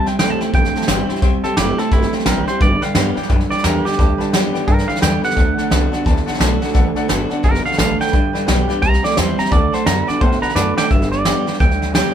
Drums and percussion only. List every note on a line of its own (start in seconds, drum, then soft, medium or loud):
0.06 snare soft
0.19 snare loud
0.19 hi-hat pedal medium
0.41 snare soft
0.54 kick loud
0.54 snare soft
0.64 snare soft
0.75 snare soft
0.82 snare soft
0.88 snare loud
0.88 hi-hat pedal medium
1.09 snare soft
1.16 snare soft
1.22 kick loud
1.22 snare soft
1.44 snare soft
1.57 snare loud
1.57 hi-hat pedal medium
1.79 snare soft
1.91 kick loud
1.91 snare soft
2.02 snare soft
2.13 snare soft
2.19 snare soft
2.26 snare loud
2.26 hi-hat pedal medium
2.48 snare soft
2.60 kick loud
2.60 snare soft
2.82 snare soft
2.95 snare loud
2.95 hi-hat pedal medium
3.17 snare soft
3.23 snare soft
3.29 kick loud
3.29 snare soft
3.41 snare soft
3.51 snare soft
3.58 snare soft
3.64 snare loud
3.64 hi-hat pedal medium
3.86 snare soft
3.92 snare soft
3.99 kick loud
3.99 snare soft
4.20 snare soft
4.33 snare loud
4.33 hi-hat pedal medium
4.55 snare soft
4.68 kick loud
4.68 snare soft
4.78 snare soft
4.89 snare soft
4.96 snare soft
5.02 snare loud
5.02 hi-hat pedal loud
5.24 snare soft
5.30 snare soft
5.37 kick loud
5.37 snare soft
5.58 snare soft
5.71 snare loud
5.71 hi-hat pedal medium
5.93 snare soft
6.06 kick loud
6.06 snare soft
6.17 snare soft
6.27 snare soft
6.34 snare soft
6.41 snare loud
6.41 hi-hat pedal medium
6.62 snare soft
6.68 snare soft
6.75 kick loud
6.75 snare soft
6.96 snare soft
7.09 snare loud
7.09 hi-hat pedal medium
7.31 snare soft
7.44 kick loud
7.44 snare soft
7.55 snare soft
7.66 snare soft
7.72 snare soft
7.79 snare loud
7.79 hi-hat pedal loud
8.01 snare soft
8.07 snare soft
8.13 kick loud
8.13 snare soft
8.35 snare soft
8.48 snare loud
8.48 hi-hat pedal medium
8.70 snare soft
8.82 kick loud
8.82 snare soft
8.94 snare soft
9.04 snare soft
9.11 snare soft
9.17 snare loud
9.17 hi-hat pedal loud
9.39 snare soft
9.45 snare soft
9.51 kick loud
9.51 snare soft
9.73 snare soft
9.86 snare loud
9.86 hi-hat pedal medium
10.09 snare soft
10.21 kick loud
10.21 snare soft
10.32 snare soft
10.43 snare soft
10.49 snare soft
10.56 snare medium
10.56 hi-hat pedal loud
10.78 snare loud
10.91 kick loud
10.91 snare soft
11.02 snare soft
11.12 snare soft
11.25 snare loud
11.25 hi-hat pedal medium
11.47 snare soft
11.54 snare soft
11.60 kick loud
11.60 snare soft
11.71 snare soft
11.82 snare soft
11.95 snare loud
11.95 hi-hat pedal loud